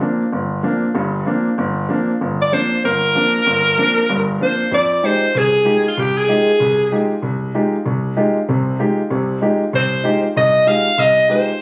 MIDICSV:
0, 0, Header, 1, 3, 480
1, 0, Start_track
1, 0, Tempo, 313152
1, 1462, Time_signature, 4, 2, 24, 8
1, 17808, End_track
2, 0, Start_track
2, 0, Title_t, "Alto saxophone"
2, 0, Program_c, 0, 65
2, 3708, Note_on_c, 0, 74, 86
2, 3884, Note_on_c, 0, 72, 92
2, 3907, Note_off_c, 0, 74, 0
2, 4357, Note_off_c, 0, 72, 0
2, 4370, Note_on_c, 0, 70, 84
2, 6701, Note_off_c, 0, 70, 0
2, 6783, Note_on_c, 0, 72, 84
2, 7215, Note_off_c, 0, 72, 0
2, 7270, Note_on_c, 0, 74, 101
2, 7743, Note_on_c, 0, 72, 92
2, 7766, Note_off_c, 0, 74, 0
2, 8245, Note_on_c, 0, 68, 86
2, 8268, Note_off_c, 0, 72, 0
2, 8994, Note_off_c, 0, 68, 0
2, 9011, Note_on_c, 0, 65, 74
2, 9186, Note_on_c, 0, 67, 86
2, 9209, Note_off_c, 0, 65, 0
2, 9471, Note_on_c, 0, 68, 86
2, 9494, Note_off_c, 0, 67, 0
2, 10898, Note_off_c, 0, 68, 0
2, 14952, Note_on_c, 0, 72, 86
2, 15652, Note_off_c, 0, 72, 0
2, 15899, Note_on_c, 0, 75, 89
2, 16370, Note_on_c, 0, 77, 102
2, 16393, Note_off_c, 0, 75, 0
2, 16855, Note_on_c, 0, 75, 101
2, 16878, Note_off_c, 0, 77, 0
2, 17319, Note_off_c, 0, 75, 0
2, 17340, Note_on_c, 0, 72, 78
2, 17808, Note_off_c, 0, 72, 0
2, 17808, End_track
3, 0, Start_track
3, 0, Title_t, "Grand piano"
3, 0, Program_c, 1, 0
3, 9, Note_on_c, 1, 53, 46
3, 17, Note_on_c, 1, 58, 46
3, 17, Note_on_c, 1, 60, 45
3, 20, Note_on_c, 1, 62, 54
3, 329, Note_off_c, 1, 53, 0
3, 333, Note_off_c, 1, 58, 0
3, 333, Note_off_c, 1, 60, 0
3, 335, Note_off_c, 1, 62, 0
3, 498, Note_on_c, 1, 31, 61
3, 912, Note_off_c, 1, 31, 0
3, 968, Note_on_c, 1, 53, 49
3, 973, Note_on_c, 1, 58, 44
3, 980, Note_on_c, 1, 60, 46
3, 980, Note_on_c, 1, 62, 53
3, 1290, Note_off_c, 1, 53, 0
3, 1292, Note_off_c, 1, 58, 0
3, 1296, Note_off_c, 1, 60, 0
3, 1296, Note_off_c, 1, 62, 0
3, 1450, Note_on_c, 1, 31, 65
3, 1452, Note_on_c, 1, 43, 62
3, 1869, Note_off_c, 1, 31, 0
3, 1870, Note_off_c, 1, 43, 0
3, 1931, Note_on_c, 1, 53, 50
3, 1937, Note_on_c, 1, 58, 49
3, 1942, Note_on_c, 1, 60, 45
3, 1949, Note_on_c, 1, 62, 59
3, 2252, Note_off_c, 1, 53, 0
3, 2255, Note_off_c, 1, 58, 0
3, 2258, Note_off_c, 1, 60, 0
3, 2261, Note_off_c, 1, 62, 0
3, 2423, Note_on_c, 1, 31, 67
3, 2837, Note_off_c, 1, 31, 0
3, 2892, Note_on_c, 1, 53, 53
3, 2898, Note_on_c, 1, 58, 43
3, 2902, Note_on_c, 1, 60, 43
3, 2909, Note_on_c, 1, 62, 57
3, 3214, Note_off_c, 1, 53, 0
3, 3217, Note_off_c, 1, 58, 0
3, 3219, Note_off_c, 1, 60, 0
3, 3222, Note_off_c, 1, 62, 0
3, 3392, Note_on_c, 1, 31, 64
3, 3803, Note_off_c, 1, 31, 0
3, 3864, Note_on_c, 1, 53, 50
3, 3868, Note_on_c, 1, 58, 45
3, 3874, Note_on_c, 1, 60, 44
3, 3877, Note_on_c, 1, 62, 55
3, 4181, Note_off_c, 1, 53, 0
3, 4182, Note_off_c, 1, 58, 0
3, 4185, Note_off_c, 1, 60, 0
3, 4187, Note_off_c, 1, 62, 0
3, 4365, Note_on_c, 1, 31, 61
3, 4770, Note_off_c, 1, 31, 0
3, 4827, Note_on_c, 1, 53, 47
3, 4830, Note_on_c, 1, 58, 41
3, 4838, Note_on_c, 1, 60, 44
3, 4841, Note_on_c, 1, 62, 56
3, 5143, Note_off_c, 1, 53, 0
3, 5144, Note_off_c, 1, 58, 0
3, 5148, Note_off_c, 1, 60, 0
3, 5150, Note_off_c, 1, 62, 0
3, 5313, Note_on_c, 1, 31, 65
3, 5724, Note_off_c, 1, 31, 0
3, 5792, Note_on_c, 1, 53, 50
3, 5796, Note_on_c, 1, 58, 45
3, 5803, Note_on_c, 1, 60, 46
3, 5805, Note_on_c, 1, 62, 57
3, 6106, Note_off_c, 1, 53, 0
3, 6108, Note_off_c, 1, 58, 0
3, 6111, Note_off_c, 1, 60, 0
3, 6112, Note_off_c, 1, 62, 0
3, 6276, Note_on_c, 1, 43, 59
3, 6278, Note_on_c, 1, 31, 61
3, 6686, Note_off_c, 1, 43, 0
3, 6687, Note_off_c, 1, 31, 0
3, 6753, Note_on_c, 1, 53, 46
3, 6760, Note_on_c, 1, 60, 42
3, 6763, Note_on_c, 1, 58, 43
3, 6764, Note_on_c, 1, 62, 50
3, 7067, Note_off_c, 1, 53, 0
3, 7070, Note_off_c, 1, 60, 0
3, 7072, Note_off_c, 1, 58, 0
3, 7072, Note_off_c, 1, 62, 0
3, 7228, Note_on_c, 1, 41, 64
3, 7642, Note_off_c, 1, 41, 0
3, 7703, Note_on_c, 1, 56, 50
3, 7710, Note_on_c, 1, 63, 47
3, 7717, Note_on_c, 1, 65, 46
3, 7717, Note_on_c, 1, 67, 58
3, 8021, Note_off_c, 1, 56, 0
3, 8025, Note_off_c, 1, 63, 0
3, 8029, Note_off_c, 1, 65, 0
3, 8029, Note_off_c, 1, 67, 0
3, 8200, Note_on_c, 1, 36, 61
3, 8608, Note_off_c, 1, 36, 0
3, 8661, Note_on_c, 1, 56, 51
3, 8668, Note_on_c, 1, 63, 47
3, 8670, Note_on_c, 1, 65, 44
3, 8671, Note_on_c, 1, 67, 56
3, 8980, Note_off_c, 1, 56, 0
3, 8984, Note_off_c, 1, 63, 0
3, 8985, Note_off_c, 1, 65, 0
3, 8986, Note_off_c, 1, 67, 0
3, 9157, Note_on_c, 1, 36, 70
3, 9566, Note_off_c, 1, 36, 0
3, 9635, Note_on_c, 1, 56, 54
3, 9641, Note_on_c, 1, 63, 47
3, 9645, Note_on_c, 1, 65, 50
3, 9645, Note_on_c, 1, 67, 58
3, 9947, Note_off_c, 1, 56, 0
3, 9950, Note_off_c, 1, 63, 0
3, 9952, Note_off_c, 1, 65, 0
3, 9952, Note_off_c, 1, 67, 0
3, 10118, Note_on_c, 1, 36, 71
3, 10527, Note_off_c, 1, 36, 0
3, 10604, Note_on_c, 1, 63, 45
3, 10605, Note_on_c, 1, 56, 55
3, 10613, Note_on_c, 1, 65, 50
3, 10613, Note_on_c, 1, 67, 59
3, 10911, Note_off_c, 1, 63, 0
3, 10912, Note_off_c, 1, 56, 0
3, 10916, Note_off_c, 1, 65, 0
3, 10916, Note_off_c, 1, 67, 0
3, 11074, Note_on_c, 1, 36, 65
3, 11484, Note_off_c, 1, 36, 0
3, 11565, Note_on_c, 1, 63, 51
3, 11568, Note_on_c, 1, 56, 51
3, 11573, Note_on_c, 1, 65, 50
3, 11573, Note_on_c, 1, 67, 55
3, 11872, Note_off_c, 1, 63, 0
3, 11873, Note_off_c, 1, 56, 0
3, 11875, Note_off_c, 1, 65, 0
3, 11876, Note_off_c, 1, 67, 0
3, 12041, Note_on_c, 1, 36, 66
3, 12447, Note_off_c, 1, 36, 0
3, 12516, Note_on_c, 1, 63, 46
3, 12518, Note_on_c, 1, 56, 53
3, 12520, Note_on_c, 1, 65, 51
3, 12525, Note_on_c, 1, 67, 55
3, 12826, Note_off_c, 1, 63, 0
3, 12827, Note_off_c, 1, 56, 0
3, 12829, Note_off_c, 1, 65, 0
3, 12831, Note_off_c, 1, 67, 0
3, 13006, Note_on_c, 1, 48, 68
3, 13011, Note_on_c, 1, 36, 67
3, 13409, Note_off_c, 1, 48, 0
3, 13412, Note_off_c, 1, 36, 0
3, 13476, Note_on_c, 1, 56, 51
3, 13478, Note_on_c, 1, 63, 48
3, 13482, Note_on_c, 1, 65, 50
3, 13489, Note_on_c, 1, 67, 58
3, 13786, Note_off_c, 1, 56, 0
3, 13787, Note_off_c, 1, 63, 0
3, 13789, Note_off_c, 1, 65, 0
3, 13793, Note_off_c, 1, 67, 0
3, 13955, Note_on_c, 1, 36, 65
3, 13956, Note_on_c, 1, 48, 60
3, 14363, Note_off_c, 1, 36, 0
3, 14364, Note_off_c, 1, 48, 0
3, 14431, Note_on_c, 1, 56, 49
3, 14440, Note_on_c, 1, 63, 45
3, 14447, Note_on_c, 1, 65, 46
3, 14448, Note_on_c, 1, 67, 55
3, 14743, Note_off_c, 1, 56, 0
3, 14747, Note_off_c, 1, 63, 0
3, 14751, Note_off_c, 1, 65, 0
3, 14751, Note_off_c, 1, 67, 0
3, 14919, Note_on_c, 1, 36, 69
3, 15325, Note_off_c, 1, 36, 0
3, 15385, Note_on_c, 1, 56, 48
3, 15388, Note_on_c, 1, 63, 49
3, 15398, Note_on_c, 1, 65, 49
3, 15401, Note_on_c, 1, 67, 60
3, 15699, Note_off_c, 1, 56, 0
3, 15701, Note_off_c, 1, 63, 0
3, 15706, Note_off_c, 1, 65, 0
3, 15707, Note_off_c, 1, 67, 0
3, 15888, Note_on_c, 1, 36, 70
3, 16289, Note_off_c, 1, 36, 0
3, 16344, Note_on_c, 1, 56, 51
3, 16347, Note_on_c, 1, 63, 44
3, 16348, Note_on_c, 1, 65, 49
3, 16355, Note_on_c, 1, 67, 55
3, 16658, Note_off_c, 1, 56, 0
3, 16660, Note_off_c, 1, 63, 0
3, 16660, Note_off_c, 1, 65, 0
3, 16664, Note_off_c, 1, 67, 0
3, 16829, Note_on_c, 1, 36, 69
3, 17239, Note_off_c, 1, 36, 0
3, 17301, Note_on_c, 1, 56, 52
3, 17306, Note_on_c, 1, 65, 48
3, 17307, Note_on_c, 1, 63, 46
3, 17318, Note_on_c, 1, 67, 61
3, 17616, Note_off_c, 1, 56, 0
3, 17619, Note_off_c, 1, 63, 0
3, 17619, Note_off_c, 1, 65, 0
3, 17625, Note_off_c, 1, 67, 0
3, 17808, End_track
0, 0, End_of_file